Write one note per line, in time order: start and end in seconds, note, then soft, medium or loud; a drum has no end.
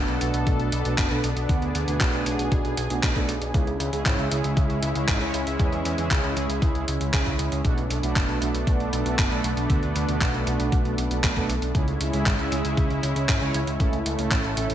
0.00 0.18 B2 medium
0.00 0.18 A3 medium
0.00 0.18 B3 medium
0.00 3.50 B3 medium
0.00 0.18 D4 medium
0.00 3.50 D4 medium
0.00 0.18 F#4 loud
0.00 1.47 A4 medium
0.08 0.19 B1 medium
0.08 closed hi-hat soft
0.21 0.32 B1 medium
0.21 0.69 B2 medium
0.21 0.69 A3 medium
0.21 0.69 B3 medium
0.21 0.69 D4 medium
0.21 0.69 F#4 loud
0.21 closed hi-hat loud
0.34 0.44 B1 medium
0.34 closed hi-hat medium
0.47 0.57 B1 loud
0.47 kick loud
0.47 closed hi-hat medium
0.60 0.70 B1 medium
0.60 closed hi-hat soft
0.72 0.83 B1 medium
0.72 closed hi-hat medium
0.85 0.96 B1 medium
0.85 1.08 B2 medium
0.85 1.08 A3 medium
0.85 1.08 B3 medium
0.85 1.08 D4 medium
0.85 1.08 F#4 medium
0.85 closed hi-hat medium
0.98 1.09 F#1 loud
0.98 kick loud
0.98 clap loud
0.98 closed hi-hat medium
1.11 1.21 B1 medium
1.11 1.29 B2 loud
1.11 1.29 A3 medium
1.11 1.29 B3 medium
1.11 1.29 D4 medium
1.11 1.29 A4 loud
1.11 closed hi-hat soft
1.23 1.34 B1 loud
1.23 closed hi-hat loud
1.36 1.47 B1 medium
1.36 closed hi-hat medium
1.49 1.60 D2 loud
1.49 1.67 B2 medium
1.49 1.67 A3 medium
1.49 1.67 B3 medium
1.49 1.67 D4 medium
1.49 1.67 F#4 medium
1.49 3.52 G#4 medium
1.49 kick loud
1.49 closed hi-hat medium
1.62 1.72 D2 medium
1.62 closed hi-hat soft
1.75 1.85 D2 loud
1.75 closed hi-hat loud
1.87 1.98 D2 medium
1.87 2.23 B2 medium
1.87 2.23 A3 medium
1.87 2.23 B3 medium
1.87 2.23 D4 medium
1.87 2.23 F#4 loud
1.87 closed hi-hat medium
2.00 2.11 B1 loud
2.00 kick loud
2.00 clap loud
2.00 closed hi-hat medium
2.13 2.24 B1 medium
2.13 closed hi-hat soft
2.26 2.37 B1 loud
2.26 2.74 B2 medium
2.26 2.74 A3 medium
2.26 2.74 B3 medium
2.26 2.74 D4 medium
2.26 2.74 F#4 loud
2.26 closed hi-hat loud
2.39 2.49 B1 medium
2.39 closed hi-hat medium
2.52 2.62 B1 loud
2.52 kick loud
2.52 closed hi-hat medium
2.65 2.75 B1 medium
2.65 closed hi-hat soft
2.77 2.88 B1 loud
2.77 closed hi-hat loud
2.90 3.01 B1 medium
2.90 3.13 B2 medium
2.90 3.13 A3 medium
2.90 3.13 B3 medium
2.90 3.13 D4 medium
2.90 3.13 F#4 medium
2.90 closed hi-hat medium
3.03 3.14 B1 loud
3.03 kick loud
3.03 clap loud
3.03 closed hi-hat medium
3.16 3.26 B1 medium
3.16 3.34 B2 loud
3.16 3.34 A3 medium
3.16 3.34 B3 medium
3.16 3.34 D4 medium
3.16 3.34 A4 loud
3.16 kick medium
3.16 closed hi-hat soft
3.29 3.39 B1 loud
3.29 closed hi-hat loud
3.41 3.52 B1 medium
3.41 closed hi-hat medium
3.54 3.65 C#2 loud
3.54 3.72 C#3 medium
3.54 3.72 G#3 medium
3.54 7.61 G#3 medium
3.54 3.72 C#4 medium
3.54 7.61 C#4 medium
3.54 3.72 E4 medium
3.54 7.61 E4 medium
3.54 3.72 G#4 medium
3.54 kick loud
3.54 closed hi-hat medium
3.67 3.78 C#2 medium
3.67 closed hi-hat soft
3.80 3.90 C#2 medium
3.80 closed hi-hat medium
3.93 4.03 C#2 medium
3.93 4.28 C#3 medium
3.93 4.28 G#3 medium
3.93 4.28 C#4 medium
3.93 4.28 E4 medium
3.93 4.28 G#4 loud
3.93 closed hi-hat medium
4.06 4.16 G#1 loud
4.06 kick loud
4.06 clap loud
4.06 closed hi-hat medium
4.18 4.29 C#2 medium
4.18 closed hi-hat soft
4.31 4.42 C#2 medium
4.31 4.79 C#3 medium
4.31 4.79 G#3 medium
4.31 4.79 C#4 medium
4.31 4.79 E4 medium
4.31 4.79 G#4 loud
4.31 closed hi-hat loud
4.44 4.55 C#2 medium
4.44 closed hi-hat medium
4.57 4.68 C#2 loud
4.57 kick loud
4.57 closed hi-hat medium
4.70 4.80 C#2 medium
4.70 closed hi-hat soft
4.82 4.93 C#2 medium
4.82 closed hi-hat loud
4.95 5.06 C#2 medium
4.95 5.18 C#3 medium
4.95 5.18 G#3 medium
4.95 5.18 C#4 medium
4.95 5.18 E4 medium
4.95 5.18 G#4 medium
4.95 closed hi-hat medium
5.08 5.19 G#1 loud
5.08 kick loud
5.08 clap loud
5.08 closed hi-hat medium
5.21 5.32 C#2 medium
5.21 5.39 C#3 loud
5.21 5.39 G#3 medium
5.21 5.39 C#4 medium
5.21 5.39 E4 loud
5.21 5.39 C#5 loud
5.21 closed hi-hat soft
5.34 5.44 C#2 loud
5.34 closed hi-hat medium
5.47 5.57 C#2 medium
5.47 closed hi-hat medium
5.59 5.70 E2 loud
5.59 5.78 C#3 medium
5.59 5.78 G#3 medium
5.59 5.78 C#4 medium
5.59 5.78 E4 medium
5.59 5.78 G#4 medium
5.59 kick loud
5.59 closed hi-hat medium
5.72 5.83 E2 medium
5.72 closed hi-hat soft
5.85 5.96 E2 medium
5.85 closed hi-hat medium
5.98 6.09 E2 medium
5.98 6.33 C#3 medium
5.98 6.33 G#3 medium
5.98 6.33 C#4 medium
5.98 6.33 E4 medium
5.98 6.33 G#4 medium
5.98 closed hi-hat medium
6.11 6.21 C#2 loud
6.11 kick loud
6.11 clap loud
6.11 closed hi-hat medium
6.24 6.34 C#2 medium
6.24 closed hi-hat soft
6.36 6.47 C#2 loud
6.36 6.85 C#3 loud
6.36 6.85 G#3 medium
6.36 6.85 C#4 medium
6.36 6.85 E4 medium
6.36 6.85 G#4 loud
6.36 closed hi-hat medium
6.49 6.60 C#2 medium
6.49 closed hi-hat medium
6.62 6.73 C#2 loud
6.62 kick loud
6.62 closed hi-hat medium
6.75 6.85 C#2 medium
6.75 closed hi-hat soft
6.88 6.98 C#2 medium
6.88 closed hi-hat medium
7.00 7.11 C#2 medium
7.00 closed hi-hat medium
7.13 7.24 C#2 loud
7.13 7.62 C#3 medium
7.13 7.62 G#3 medium
7.13 7.62 C#4 medium
7.13 7.62 E4 medium
7.13 7.61 G#4 medium
7.13 kick loud
7.13 clap loud
7.13 closed hi-hat medium
7.26 7.37 C#2 medium
7.26 kick medium
7.26 closed hi-hat soft
7.39 7.49 C#2 loud
7.39 closed hi-hat medium
7.52 7.62 C#2 medium
7.52 closed hi-hat soft
7.64 7.75 B1 loud
7.64 7.83 B2 medium
7.64 11.71 A3 medium
7.64 7.83 A3 medium
7.64 11.71 B3 medium
7.64 7.83 B3 medium
7.64 7.83 D4 medium
7.64 11.71 D4 medium
7.64 7.83 F#4 medium
7.64 kick loud
7.64 closed hi-hat soft
7.77 7.88 B1 medium
7.77 closed hi-hat soft
7.90 8.01 B1 medium
7.90 closed hi-hat medium
8.03 8.14 B1 medium
8.03 8.38 B2 medium
8.03 8.38 A3 medium
8.03 8.38 B3 medium
8.03 8.38 D4 medium
8.03 8.38 F#4 medium
8.03 closed hi-hat medium
8.16 8.26 F#1 loud
8.16 kick loud
8.16 clap loud
8.16 closed hi-hat medium
8.29 8.39 B1 medium
8.29 closed hi-hat soft
8.41 8.52 B1 medium
8.41 8.90 B2 medium
8.41 8.90 A3 medium
8.41 8.90 B3 medium
8.41 8.90 D4 medium
8.41 8.90 F#4 loud
8.41 closed hi-hat medium
8.54 8.65 B1 medium
8.54 closed hi-hat medium
8.67 8.78 B1 loud
8.67 kick loud
8.67 closed hi-hat medium
8.79 8.90 B1 medium
8.79 closed hi-hat soft
8.92 9.03 B1 loud
8.92 closed hi-hat medium
9.05 9.16 B1 medium
9.05 9.28 B2 medium
9.05 9.28 A3 medium
9.05 9.28 B3 medium
9.05 9.28 D4 medium
9.05 9.28 F#4 medium
9.05 closed hi-hat medium
9.18 9.29 F#1 loud
9.18 kick loud
9.18 clap loud
9.18 closed hi-hat medium
9.31 9.42 B1 medium
9.31 9.49 B2 loud
9.31 9.49 A3 loud
9.31 9.49 B3 medium
9.31 9.49 D4 medium
9.31 9.49 A4 loud
9.31 closed hi-hat soft
9.44 9.55 B1 loud
9.44 closed hi-hat medium
9.57 9.67 B1 medium
9.57 closed hi-hat soft
9.70 9.80 D2 loud
9.70 9.88 B2 medium
9.70 9.88 A3 medium
9.70 9.88 B3 medium
9.70 9.88 D4 medium
9.70 9.88 F#4 medium
9.70 kick loud
9.70 closed hi-hat medium
9.82 9.93 D2 medium
9.82 closed hi-hat soft
9.95 10.06 D2 loud
9.95 closed hi-hat medium
10.08 10.19 D2 medium
10.08 10.44 B2 medium
10.08 10.44 A3 medium
10.08 10.44 B3 medium
10.08 10.44 D4 medium
10.08 10.44 F#4 medium
10.08 closed hi-hat medium
10.21 10.32 B1 loud
10.21 kick loud
10.21 clap loud
10.21 closed hi-hat medium
10.34 10.44 B1 medium
10.34 closed hi-hat soft
10.46 10.57 B1 loud
10.46 10.95 B2 medium
10.46 10.95 A3 medium
10.46 10.95 B3 medium
10.46 10.95 D4 medium
10.46 10.95 F#4 loud
10.46 closed hi-hat medium
10.59 10.70 B1 medium
10.59 closed hi-hat medium
10.72 10.83 B1 loud
10.72 kick loud
10.72 closed hi-hat medium
10.85 10.96 B1 medium
10.85 closed hi-hat soft
10.98 11.08 B1 medium
10.98 closed hi-hat medium
11.10 11.21 B1 medium
11.10 11.33 B2 medium
11.10 11.33 A3 medium
11.10 11.33 B3 medium
11.10 11.33 D4 medium
11.10 11.33 F#4 medium
11.10 closed hi-hat medium
11.24 11.34 B1 loud
11.24 kick loud
11.24 clap loud
11.24 closed hi-hat medium
11.36 11.47 B1 medium
11.36 11.54 B2 loud
11.36 11.54 A3 loud
11.36 11.54 B3 loud
11.36 11.54 D4 medium
11.36 11.54 A4 loud
11.36 kick medium
11.36 closed hi-hat soft
11.49 11.60 B1 loud
11.49 closed hi-hat medium
11.62 11.72 B1 medium
11.62 closed hi-hat soft
11.75 11.85 C#2 loud
11.75 11.93 C#3 medium
11.75 11.93 G#3 medium
11.75 13.78 G#3 medium
11.75 11.93 C#4 medium
11.75 14.74 C#4 medium
11.75 11.93 E4 medium
11.75 14.74 E4 medium
11.75 11.93 G#4 medium
11.75 kick loud
11.75 closed hi-hat medium
11.88 11.98 C#2 medium
11.88 closed hi-hat soft
12.01 12.11 C#2 loud
12.01 closed hi-hat medium
12.13 12.24 C#2 medium
12.13 12.49 C#3 medium
12.13 12.49 G#3 medium
12.13 12.49 C#4 medium
12.13 12.49 E4 medium
12.13 12.49 G#4 medium
12.13 closed hi-hat soft
12.26 12.37 G#1 loud
12.26 kick loud
12.26 clap loud
12.26 closed hi-hat medium
12.39 12.49 C#2 medium
12.39 closed hi-hat soft
12.52 12.62 C#2 loud
12.52 13.00 C#3 medium
12.52 13.00 G#3 medium
12.52 13.00 C#4 medium
12.52 13.00 E4 medium
12.52 13.00 G#4 loud
12.52 closed hi-hat medium
12.65 12.75 C#2 medium
12.65 closed hi-hat medium
12.77 12.88 C#2 loud
12.77 kick loud
12.77 closed hi-hat medium
12.90 13.01 C#2 medium
12.90 closed hi-hat soft
13.03 13.14 C#2 medium
13.03 closed hi-hat medium
13.16 13.26 C#2 medium
13.16 13.38 C#3 medium
13.16 13.38 G#3 medium
13.16 13.38 C#4 medium
13.16 13.38 E4 medium
13.16 13.38 G#4 medium
13.16 closed hi-hat medium
13.29 13.39 G#1 loud
13.29 kick loud
13.29 clap loud
13.29 closed hi-hat medium
13.41 13.52 C#2 medium
13.41 13.60 C#3 loud
13.41 13.60 G#3 loud
13.41 13.60 C#4 medium
13.41 13.60 E4 medium
13.41 13.60 C#5 loud
13.41 closed hi-hat soft
13.54 13.65 C#2 loud
13.54 closed hi-hat medium
13.67 13.78 C#2 medium
13.67 closed hi-hat soft
13.80 13.91 A1 loud
13.80 13.98 A2 medium
13.80 13.98 A3 medium
13.80 14.74 A3 medium
13.80 13.98 C#4 medium
13.80 13.98 E4 medium
13.80 13.98 A4 medium
13.80 kick loud
13.80 closed hi-hat medium
13.93 14.03 C#2 medium
13.93 closed hi-hat soft
14.05 14.16 C#2 medium
14.05 closed hi-hat loud
14.18 14.29 C#2 medium
14.18 14.54 A2 medium
14.18 14.54 A3 medium
14.18 14.54 C#4 medium
14.18 14.54 E4 medium
14.18 14.54 A4 medium
14.18 closed hi-hat medium
14.31 14.42 A1 loud
14.31 kick loud
14.31 clap loud
14.31 closed hi-hat medium
14.44 14.55 A1 medium
14.44 closed hi-hat soft
14.57 14.67 A1 loud
14.57 14.74 A2 medium
14.57 14.74 A3 medium
14.57 14.74 C#4 medium
14.57 14.74 E4 medium
14.57 14.74 A4 loud
14.57 closed hi-hat loud
14.70 14.74 A1 medium
14.70 closed hi-hat medium